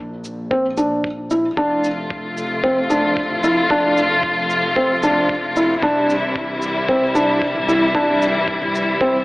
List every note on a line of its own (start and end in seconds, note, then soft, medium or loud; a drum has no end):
0.00 1.55 A#1 medium
0.24 shaker medium
0.51 0.65 C4 medium
0.51 kick loud
0.77 1.06 D4 medium
0.77 shaker medium
1.04 kick loud
1.31 1.45 E4 medium
1.31 shaker medium
1.57 5.80 F1 medium
1.57 9.25 C3 medium
1.57 5.78 F3 medium
1.57 5.78 A3 medium
1.57 1.85 D4 medium
1.57 5.78 F4 medium
1.57 kick loud
1.84 shaker medium
2.10 kick medium
2.37 shaker medium
2.64 2.78 C4 medium
2.64 kick medium
2.90 3.18 D4 medium
2.90 shaker medium
3.17 kick medium
3.31 mid tom medium
3.43 3.58 E4 medium
3.43 shaker medium
3.70 3.98 D4 loud
3.70 kick medium
3.97 shaker medium
4.23 kick medium
4.50 shaker medium
4.76 4.90 C4 medium
4.76 kick medium
5.03 5.31 D4 medium
5.03 mid tom medium
5.03 shaker medium
5.29 kick medium
5.56 5.70 E4 medium
5.56 shaker medium
5.82 9.25 C2 medium
5.82 9.25 E3 medium
5.82 9.25 G3 medium
5.82 6.11 D4 loud
5.82 9.25 E4 medium
5.82 kick loud
6.10 shaker medium
6.36 kick loud
6.62 shaker medium
6.89 7.03 C4 medium
6.89 kick medium
7.15 7.43 D4 medium
7.15 shaker medium
7.42 kick medium
7.55 mid tom medium
7.68 7.82 E4 medium
7.68 shaker medium
7.95 8.23 D4 medium
7.95 kick loud
8.22 shaker medium
8.48 kick loud
8.62 mid tom medium
8.75 shaker medium
9.01 9.15 C4 medium
9.01 kick medium